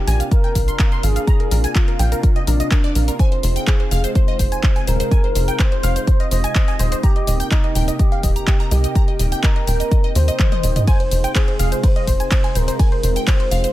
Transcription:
Already playing: C3 A#3 D4 F4 G4
0.07 A#1 G#5, open hi-hat, shaker
0.20 F5, closed hi-hat, shaker
0.31 A#4 F5, kick, closed hi-hat, shaker
0.44 G5, closed hi-hat
0.55 A#1 F5, kick, open hi-hat, shaker
0.68 C6, closed hi-hat, shaker
0.79 F5, kick, clap, closed hi-hat, shaker
0.92 C6, closed hi-hat
1.03 G#1 G#4 F5, open hi-hat, shaker
1.16 F5, closed hi-hat, shaker
1.27 A#5, kick, closed hi-hat, shaker
1.40 A#4, closed hi-hat
1.51 A#1 A#4, open hi-hat, shaker
1.64 G#5, closed hi-hat, shaker
1.75 F4 A#4, kick, clap, closed hi-hat, shaker
1.88 A#4, closed hi-hat
1.99 A#1 G5, open hi-hat, shaker
2.12 A#4, closed hi-hat, shaker
2.23 A#4, kick, closed hi-hat, shaker
2.36 D#5, closed hi-hat
2.47 A#1 D4 A#4, open hi-hat, shaker
2.60 D#5, closed hi-hat, shaker
2.71 A#4, kick, clap, closed hi-hat, shaker
2.84 D5, closed hi-hat
2.95 A#1 A#4, open hi-hat, shaker
3.08 A#4, closed hi-hat, shaker
3.19 G#3 D#4 C5 G#5, kick, closed hi-hat, shaker
3.32 C5, closed hi-hat
3.43 F1 C5, open hi-hat, shaker
3.56 G5, closed hi-hat, shaker
3.67 G#4 C5, kick, clap, closed hi-hat, shaker
3.80 C5, closed hi-hat
3.91 F1 F5, open hi-hat, shaker
4.04 C5, closed hi-hat, shaker
4.15 C5, kick, closed hi-hat, shaker
4.28 D#5, closed hi-hat
4.39 F1 C5, kick, open hi-hat, shaker
4.52 G#5, closed hi-hat, shaker
4.63 C5, kick, clap, closed hi-hat, shaker
4.76 G#5, closed hi-hat
4.87 D#1 A#4 C5, open hi-hat, shaker
5.00 C5, closed hi-hat, shaker
5.11 G#5, kick, closed hi-hat, shaker
5.24 C5, closed hi-hat
5.35 F1 C5, open hi-hat, shaker
5.48 G5, closed hi-hat, shaker
5.59 C5, kick, clap, closed hi-hat, shaker
5.72 C5, closed hi-hat
5.83 F1 F5, open hi-hat, shaker
5.96 C5, closed hi-hat, shaker
6.07 C5, kick, closed hi-hat, shaker
6.20 D#5, closed hi-hat
6.31 F1 C5 D#5, open hi-hat, shaker
6.44 G#5, closed hi-hat, shaker
6.55 C5, kick, clap, closed hi-hat, shaker
6.68 G#5, closed hi-hat
6.79 D#1 C5, open hi-hat, shaker
6.92 C5, closed hi-hat, shaker
7.03 A#3 G4 A#5, kick, closed hi-hat, shaker
7.16 D#5, closed hi-hat
7.27 D#1 D#5, open hi-hat, shaker
7.40 G5, closed hi-hat, shaker
7.51 D#4 D#5, kick, clap, closed hi-hat, shaker
7.64 D#5, closed hi-hat
7.75 D#1 G5, open hi-hat, shaker
7.88 D#5, closed hi-hat, shaker
7.99 G4 D#5, kick, closed hi-hat, shaker
8.12 F5, closed hi-hat
8.23 D#1 D#5, kick, open hi-hat, shaker
8.36 A#5, closed hi-hat, shaker
8.47 D#5, kick, clap, closed hi-hat, shaker
8.60 A#5, closed hi-hat
8.71 C2 G4 D#5, open hi-hat, shaker
8.84 D#5, closed hi-hat, shaker
8.95 A#5, kick, closed hi-hat, shaker
9.08 D#5, closed hi-hat
9.19 D#1 D#5, open hi-hat, shaker
9.32 G5, closed hi-hat, shaker
9.43 A#4 D#5, kick, clap, closed hi-hat, shaker
9.56 D#5, closed hi-hat
9.67 D#1 G5, open hi-hat, shaker
9.80 D#5, closed hi-hat, shaker
9.91 D#5, kick, closed hi-hat, shaker
10.04 D#5, closed hi-hat
10.15 D#2 C5 D#5, open hi-hat, shaker
10.28 D#5, closed hi-hat, shaker
10.39 kick, clap, closed hi-hat, high tom, shaker
10.52 D#5, closed hi-hat, high tom
10.63 D#1 D#5, open hi-hat, shaker
10.76 D#5, closed hi-hat, mid tom, shaker
10.87 C3 G#3 F4 C5 G#5, kick, closed hi-hat, ride, shaker
11.00 C5, closed hi-hat
11.11 F1 C5, open hi-hat, shaker
11.24 G5, closed hi-hat, shaker
11.35 G#4 C5, kick, clap, closed hi-hat, ride, shaker
11.48 C5, closed hi-hat
11.59 F1 F5, open hi-hat, shaker
11.72 C5, closed hi-hat, shaker
11.83 C5, kick, closed hi-hat, ride, shaker
11.96 D#5, closed hi-hat
12.07 F1 C5, kick, open hi-hat, shaker
12.20 G#5, closed hi-hat, shaker
12.31 C5, kick, clap, closed hi-hat, ride, shaker
12.44 G#5, closed hi-hat
12.55 D#1 A#4 C5, open hi-hat, shaker
12.68 C5, closed hi-hat, shaker
12.79 G#5, kick, closed hi-hat, ride, shaker
12.92 C5, closed hi-hat
13.03 F1 C5, open hi-hat, shaker
13.16 G5, closed hi-hat, shaker
13.27 C5, kick, clap, closed hi-hat, ride, shaker
13.40 C5, closed hi-hat
13.51 F1 F5, open hi-hat, shaker
13.64 C5, closed hi-hat, shaker

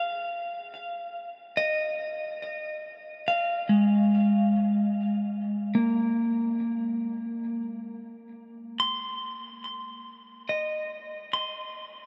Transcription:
Already playing: G#4 F5
1.57 D#5
3.28 F5
3.69 G#3
5.75 A#3
8.80 C6
10.49 D#5
11.33 C6

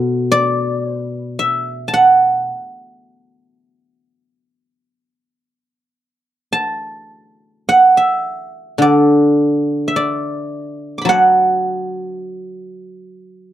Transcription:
Already playing: B2 B4
0.32 D5
1.01 B4
1.39 E5
1.88 A5
1.94 F#5
6.53 A5
7.69 F#5
7.97 E5
8.78 D3 D5
9.88 E5
9.96 D5
10.98 B5 D6
11.05 F#3 F#5 A5

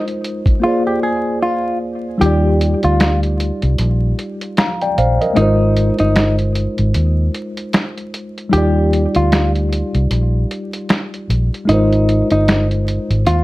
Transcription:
Already playing: G#3 D#4 F4 A#4 C5
0.08 closed hi-hat
0.24 closed hi-hat
0.46 kick, closed hi-hat
0.60 A#3 F4
0.64 G#4 C5
0.68 D5
0.87 G4
1.03 G#4
1.43 F4
2.18 D#2 G3 D#4 G4, closed hi-hat
2.22 F4 G4 D5
2.61 closed hi-hat
2.83 D2 F4, closed hi-hat
3.00 finger snap, snare, closed hi-hat
3.23 closed hi-hat
3.40 closed hi-hat
3.62 C2, closed hi-hat
3.78 A#1, closed hi-hat
4.19 closed hi-hat
4.41 closed hi-hat
4.57 F5 A#5, finger snap, snare, closed hi-hat
4.82 D5 G5, closed hi-hat
4.98 A#1 C5 F5, closed hi-hat
5.21 A#4 D#5, closed hi-hat
5.34 G#1 G#3 D#4, closed hi-hat
5.38 F4 A#4 C5
5.77 closed hi-hat
5.99 G1 D#4, closed hi-hat
6.16 finger snap, snare, closed hi-hat
6.39 closed hi-hat
6.55 closed hi-hat
6.78 G#1, closed hi-hat
6.94 D#2, closed hi-hat
7.34 closed hi-hat
7.57 closed hi-hat
7.73 finger snap, snare, closed hi-hat
7.97 closed hi-hat
8.14 closed hi-hat
8.38 closed hi-hat
8.49 D#2 G3 D#4 G4, closed hi-hat
8.53 F4 G4
8.58 D5
8.93 closed hi-hat
9.15 D2 F4, closed hi-hat
9.32 finger snap, snare, closed hi-hat
9.55 closed hi-hat
9.72 closed hi-hat
9.95 C2, closed hi-hat
10.11 A#1, closed hi-hat
10.51 closed hi-hat
10.73 closed hi-hat
10.89 finger snap, snare, closed hi-hat
11.14 closed hi-hat
11.29 A#1, closed hi-hat
11.54 closed hi-hat
11.65 G#1 G#3 D#4, closed hi-hat
11.69 F4 A#4
11.73 C5
11.93 closed hi-hat
12.09 closed hi-hat
12.31 G1 D#4, closed hi-hat
12.48 finger snap, snare, closed hi-hat
12.71 closed hi-hat
12.88 closed hi-hat
13.10 G#1, closed hi-hat
13.26 D#2 F4, closed hi-hat

